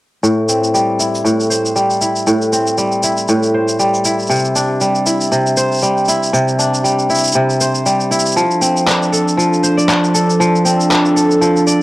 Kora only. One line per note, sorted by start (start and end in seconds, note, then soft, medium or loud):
0.23 1.23 A2 medium
0.49 2.51 C4 medium
0.74 1.75 G3 medium
1.00 2.01 E4 medium
1.25 2.26 A2 medium
1.50 3.53 C5 medium
1.76 2.77 G3 medium
2.01 3.03 E4 medium
2.27 3.27 A2 medium
2.52 4.36 C4 medium
2.78 3.79 G3 medium
3.03 4.05 E4 medium
3.29 4.35 A2 medium
3.54 4.73 C5 medium
3.79 4.81 G3 medium
4.05 5.06 E4 medium
4.30 5.31 C3 medium
4.56 6.58 D4 medium
4.81 5.81 G3 medium
5.06 6.08 E4 medium
5.32 6.32 C3 medium
5.57 7.59 C5 medium
5.82 6.83 G3 medium
6.08 7.09 E4 medium
6.33 7.34 C3 medium
6.59 8.43 D4 medium
6.84 7.85 G3 medium
7.09 8.11 E4 medium
7.35 8.42 C3 medium
7.61 8.79 C5 medium
7.86 8.42 G3 medium
8.11 9.44 E4 medium
8.36 9.36 F3 medium
8.61 10.64 C4 medium
8.87 9.88 D4 medium
9.12 10.14 A4 medium
9.38 10.39 F3 medium
9.63 10.82 C5 medium
9.77 11.66 D5 medium
9.89 10.90 D4 medium
10.14 11.16 A4 medium
10.40 11.40 F3 medium
10.65 11.83 C4 medium
10.91 11.83 D4 medium
11.16 11.83 A4 medium
11.41 11.83 F3 medium
11.67 11.83 D5 medium